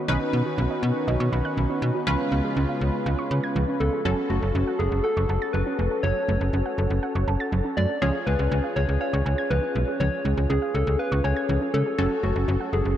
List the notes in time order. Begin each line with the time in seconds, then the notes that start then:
0.08 B1 D#3 B3 C#4 D#4 F#4 B4
0.33 B2 B3
0.46 F#4
0.58 B1 C#4
0.70 D#5
0.83 B2 F#4
1.08 B1 D#5
1.20 B2 C#6
1.32 B1 B5
1.45 F#6
1.57 B1 D#3
1.70 C#4
1.82 B2 B3
1.95 F#4
2.07 C#2 C#3 F3 G#3 C#4 F4 B4
2.32 C#2 B3
2.44 G#4
2.56 C#2 C#4
2.69 F5
2.81 C#2 G#4
3.06 C#2 F5
3.19 C#6
3.31 C#3 B5
3.43 G#6
3.56 C#2 F3
3.68 C#4
3.80 C#2 B3 A4
3.93 G#4
4.05 F#1 F#3 C#4 F#4 A4
4.30 F#1 A3 F#4
4.42 F#1 A4
4.55 F#1 C#4
4.67 F#5
4.79 F#1 G#4 A4
4.92 F#1
5.04 A4 F#5
5.17 F#1 C#6
5.29 F#1 A5
5.42 A6
5.53 F#1 F#3 B4
5.66 C#4
5.79 F1 A3
5.91 A4
6.03 F#1 F#3 C#5
6.28 F#1 A3
6.41 F#1 A4
6.53 F#1 C#4
6.66 F#5
6.78 F#1 A4
6.90 F#1
7.03 F#5
7.15 F#1 C#6
7.28 F#1 A5
7.40 A6
7.52 F#1 F#3
7.65 C#4
7.77 F#2 A3 D5
7.89 A4
8.02 C#2 F3 C#4 F4 G#4 C#5
8.27 C#2 G#3 B4
8.39 C#2 G#4
8.51 C#2 C#4
8.64 F5
8.76 C#2 G#4 C#5
8.89 C#2
9.01 C#5 F5
9.13 C#2 C#6
9.26 C#2 G#5
9.38 G#6
9.50 C#2 F3 B4
9.63 C#4
9.75 B1 G#3
9.88 G#4
10.00 C#2 F3 C#5
10.25 C#2 G#3
10.37 C#2 G#4
10.50 C#2 C#4 G#4
10.62 F5
10.74 C#2 G#4 A4
10.87 C#2
10.99 B4 F5
11.12 C#2 C#6
11.24 C#2 C#5 G#5
11.36 G#6
11.49 C#2 F3
11.61 C#4
11.74 C#3 G#3 A4
11.86 G#4
11.98 F#1 F#3 C#4 F#4 A4
12.23 F#1 A3 F#4
12.36 F#1 A4
12.48 F#1 C#4
12.60 F#5
12.73 F#1 G#4 A4
12.85 F#1